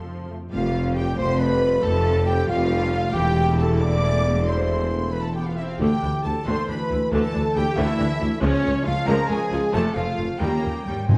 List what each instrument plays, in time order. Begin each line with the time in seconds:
Already playing: double bass section F2, viola section F3 A4, harp F3 C4 F4 A4 F5, violin section C6
0.08 harp A5
0.29 trombone section F3 A3, harp F4
0.42 harp C4
0.51 tuba F1, double bass section F1, cello section F2, harp F3, trombone section G3 A3, viola section G3 G4, clarinet F4, french horn section F4, violin section F5, flute F5
0.75 viola section A3 F4, harp C4
0.87 harp G4
0.96 viola section G3 G4, clarinet G4, french horn section G4, harp A4, violin section G5, flute G5
1.16 tuba F1, double bass section F1, cello section F2, trombone section G3 A3, viola section A3 F4, french horn section C5, clarinet C5, harp G5, flute C6, violin section C6
1.31 harp A5
1.39 viola section G3 G4, french horn section B4, clarinet B4, harp G5, violin section B5, flute B5
1.52 harp A4
1.62 viola section A3 F4
1.73 harp F4
1.81 double bass section F1, tuba F1, cello section F2, harp F3, trombone section G3 A3, viola section G3 G4, french horn section A4, clarinet A4, flute A5, violin section A5
2.05 viola section A3 F4, harp F4
2.16 harp G4
2.26 viola section G3 G4, clarinet G4, french horn section G4, flute G5, violin section G5
2.38 harp C5
2.47 tuba F1, double bass section F1, cello section F2, trombone section G3 A3, viola section A3 F4, clarinet F4, french horn section F4, flute F5, violin section F5, harp G5
2.60 harp A5
2.70 viola section G3 G4, harp G5
2.81 harp A4
2.92 viola section A3 F4, harp C4
3.12 tuba E1, double bass section E1, cello section E2, harp E3, trombone section E3 A3, viola section A3 E4, clarinet G4, french horn section G4, flute G5, violin section G5
3.35 harp E4
3.58 clarinet A4, french horn section A4, harp C5, violin section A5, flute A5
3.70 harp E5
3.80 clarinet D5, french horn section D5, harp A5, violin section D6, flute D6
3.92 harp C6
4.04 harp A5
4.14 harp C5
4.37 harp C4
4.46 trombone section E3 A3, harp E3, viola section A3 E4, clarinet C5, french horn section C5, violin section C6, flute C6
4.81 harp A4
4.92 harp C5
5.04 harp E5
5.11 viola section A3, clarinet B4, french horn section B4, harp A5, flute B5, violin section B5
5.22 clarinet A4, french horn section A4, violin section A5, flute A5, harp C6
5.33 viola section B3, clarinet G4, french horn section G4, violin section G5, flute G5, harp A5
5.46 clarinet F4, french horn section F4, harp C5, violin section F5, flute F5
5.56 viola section C4, harp E4, french horn section E4, clarinet E4, flute E5, violin section E5
5.66 harp C4, french horn section F4, flute F5, violin section F5
5.71 clarinet F4, violin section F5
5.78 tuba D2, cello section D2, double bass section D2, harp D3, viola section D3 A3, trombone section E3 A3, french horn section G4, clarinet G4, flute G5, violin section G5
6.02 tuba D2, double bass section D2, cello section D2, viola section E3 D4, harp D4
6.14 harp E4
6.23 tuba D2, double bass section D2, cello section D2, viola section A3 E4, french horn section A4, harp A4, clarinet A4, violin section A5, flute A5
6.36 harp D5
6.44 tuba D2, cello section D2, double bass section D2, viola section D3 A3, french horn section C5, harp E5, flute C6, violin section C6
6.49 clarinet C5
6.58 harp A5
6.67 tuba D2, double bass section D2, cello section D2, viola section E3 D4, french horn section B4, flute B5, violin section B5
6.72 clarinet B4
6.80 harp A4
6.90 tuba D2, cello section D2, double bass section D2, viola section A3 E4, harp D4
7.02 harp A3
7.10 tuba D2, cello section D2, double bass section D2, harp D3, viola section D3 A3, french horn section A4, violin section A5, flute A5
7.15 clarinet A4
7.23 harp D4
7.33 tuba D2, cello section D2, double bass section D2, viola section E3 D4, harp A3
7.45 harp E4
7.54 cello section D2, tuba D2, double bass section D2, viola section A3 E4, french horn section G4, clarinet G4, harp A4, violin section G5, flute G5
7.67 harp D5
7.76 tuba D2, double bass section D2, cello section D2, viola section D3 A3, french horn section E4, clarinet E4, flute E5, violin section E5
7.88 harp A5
7.98 tuba D2, double bass section D2, cello section D2, viola section E3 D4
8.10 harp A4
8.20 tuba D2, double bass section D2, cello section D2, viola section A3 E4, harp D4
8.31 harp A3
8.41 tuba C#2, double bass section C#2, cello section C#2, harp C#3, trombone section F3 G#3, viola section F3 G#3, french horn section C#4, clarinet C#4, violin section C#5, flute C#5
8.52 harp G#3
8.63 tuba C#2, cello section C#2, double bass section C#2, viola section G#3 C#4, harp F4
8.74 harp G#4
8.84 tuba C#2, double bass section C#2, cello section C#2, viola section C#4 F4, french horn section F4, clarinet F4, harp C#5, violin section F5, flute F5
8.97 harp F5
9.05 tuba C#2, cello section C#2, double bass section C#2, viola section F3 G#3, clarinet A#4, french horn section A#4, harp G#5, flute A#5, violin section A#5
9.19 harp C#6
9.28 tuba C#2, double bass section C#2, cello section C#2, viola section G#3 C#4, french horn section G#4, clarinet G#4, flute G#5, violin section G#5, harp G#5
9.41 harp C#5
9.51 tuba C#2, double bass section C#2, cello section C#2, viola section C#4 F4, harp F4
9.63 harp G#3
9.72 tuba F1, double bass section F1, cello section F2, viola section C3 A3, trombone section F3 A3, harp F3, french horn section A4, clarinet A4, flute A5, violin section A5
9.94 tuba F1, double bass section F1, cello section F2, viola section F3 C4, french horn section F4, clarinet F4, harp F4, flute F5, violin section F5
10.07 harp A4
10.18 tuba F1, double bass section F1, cello section F2, viola section A3 F4, harp C5
10.30 harp F5
10.38 tuba D#2, cello section D#2 A#3, double bass section D#2, viola section D#3 G3, trombone section D#3 C#4, harp D#3, french horn section G4, clarinet G4, flute G5, violin section G5 A#5
10.53 harp A#3
10.63 tuba D#2, cello section D#2, double bass section D#2, viola section G3 A#3, harp C#4
10.75 harp A#4
10.85 tuba D#2, cello section D#2 G3, double bass section D#2, viola section A#3 C#4, harp D#5, violin section G5
10.91 harp G#2
10.95 harp G#3 C#5
10.99 harp G#4
11.04 viola section G#3 D#4, harp C5, violin section C5
11.09 tuba G#1, double bass section G#1, timpani G#2, trombone section D#3 C4, cello section G#3, violin section G#5